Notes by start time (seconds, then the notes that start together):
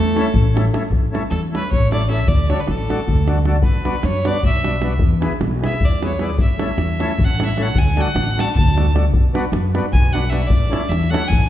Already playing: E2 A3 A4
0.07 davul high
0.15 A3 C#4 E4 A4, davul high
0.27 davul high
0.34 A1, davul low
0.47 davul high
0.54 A3 C#4 E4 A4, davul high
0.66 davul high
0.72 A3 C#4 E4 A4, davul high
0.84 davul high
0.90 A1, davul low
1.11 A3 C#4 E4 A4, davul high
1.30 E2 A4, davul high
1.43 davul high
1.51 A3 C#4 E4 A4, davul high
1.55 B4
1.64 davul high
1.71 A1 C#5, davul low
1.91 A3 C#4 E4 A4 D5, davul high
2.08 A3 C#4 E4 A4 E5, davul high
2.19 davul high
2.27 D2 D5, davul low
2.48 A3 D4 F#4 A4 C#5, davul high
2.60 B4
2.68 A1 A4, davul high
2.79 davul high
2.89 A3 D4 F#4 A4, davul high
2.99 davul high
3.08 D2, davul low
3.27 A3 D4 F#4 A4, davul high
3.38 davul high
3.45 A3 D4 F#4 A4, davul high
3.54 davul high
3.62 B1 B4, davul low
3.84 B3 D4 F#4 B4, davul high
4.03 F#2 C#5, davul high
4.25 B3 D4 F#4 B4 D5, davul high
4.35 davul high
4.43 B1 E5, davul low
4.64 B3 D4 F#4 B4, davul high
4.73 davul high
4.81 B3 D4 F#4 B4, davul high
4.92 davul high
4.99 E2, davul low
5.11 davul high
5.20 B3 E4 G#4 B4, davul high
5.32 davul high
5.41 B1, davul high
5.61 B3 E4 G#4 B4, davul high
5.66 E5
5.72 davul high
5.81 E2, davul low
5.85 D5
5.92 davul high
6.01 B3 E4 G#4 B4, davul high
6.05 C#5
6.19 B3 E4 G#4 B4, davul high
6.23 D5
6.29 davul high
6.37 A1, davul low
6.42 E5
6.58 A3 C#4 E4 A4, davul high
6.78 E2, davul high
6.89 davul high
6.99 A3 C#4 E4 A4, davul high
7.10 davul high
7.18 A1, davul low
7.24 F#5
7.39 A3 C#4 E4 A4, davul high
7.45 E5
7.50 davul high
7.57 A3 C#4 E4 A4, davul high
7.62 F#5
7.67 davul high
7.75 D2 G#5, davul low
7.96 A3 D4 F#4 A4, davul high
8.01 F#5
8.15 A1, davul high
8.28 davul high
8.36 A3 D4 F#4 A4 A5, davul high
8.48 davul high
8.55 D2 A5, davul low
8.75 A3 D4 F#4 A4, davul high
8.87 davul high
8.94 A3 D4 F#4 A4, davul high
9.11 B1, davul low
9.33 B3 D4 F#4 B4, davul high
9.52 F#2, davul high
9.74 B3 D4 F#4 B4, davul high
9.85 davul high
9.93 B1 G#5, davul low
10.13 B3 D4 F#4 B4 F#5, davul high
10.24 davul high
10.30 B3 D4 F#4 B4 E5, davul high
10.42 davul high
10.47 A1 D5, davul low
10.62 davul high
10.69 A3 C#4 E4 A4, davul high
10.89 E2 E5, davul high
11.03 davul high
11.10 A3 C#4 E4 A4 F#5
11.14 davul high
11.28 A1 G#5
11.32 davul low
11.44 davul high